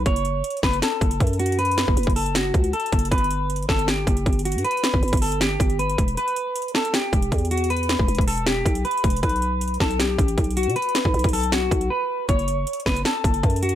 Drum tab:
HH |x-----x-----x-----------x---x---x---------x-----x-----------x-----x-----x---x---x---x---x---x---|x---x---x---x-----------x---x---x---o-----x-----x-----------x-----x-----x---x---x---x---x---x---|x---x---x---x-----------x---x---x---------x-----x-----------x-----x-----x---x---x---x---x---x---|x---x---x---x-----------x--x--x--x--o-----x-----x-----------x-----x-----x-----x-----x-----x-----|
SD |------------------------------------o-----------o-----------------------------------------------|------------o-----------------------------------o-----------------------------------------------|------------------------------------o-----------o-----------------------------------------------|------------o-----------------------------------o-----------------------------------------------|
BD |o-----------------------------------o-----------------------o-----------o-----------------------|------------------o-----------o-----------------------------o-----------------------o-----------|o-----------------------------------o-----------------------o-----------o-----------------------|------------------o-----------o-----------------------------o-----------------------o-----------|

HH |x-----x-----x-----------x---x---x---------x-----x-----------x-----x-----x---x---x---x---x---x---|x---x---x---x-----------x---x---x---o-----x-----x-----------x-----x-----x---x---x---x---x---x---|x---x---x---x-----------x---x---x---------x-----x-----------x-----x-----x---x---x---x---x---x---|x---x---x---x-----------x--x--x--x--o-----x-----x-----------x-----x-----------------------------|
SD |------------------------------------o-----------o-----------------------------------------------|------------o-----------------------------------o-----------------------------------------------|------------------------------------o-----------o-----------------------------------------------|------------o-----------------------------------o-----------------------------------------------|
BD |------------------------------------------------------------o-----------o-----------------------|------------------o-----------o-----------------------------o-----------------------o-----------|o-----------------------------------o-----------------------o-----------o-----------------------|------------------o-----------o-----------------------------o-----------------------------------|

HH |x-----x-----x-----------x---x---x---------x-----x-----------x-----x-----x---x---x---x---x-------|
SD |------------------------------------o-----------o-----------------------------------------------|
BD |o-----------------------------------o-----------------------o-----------o-----------------------|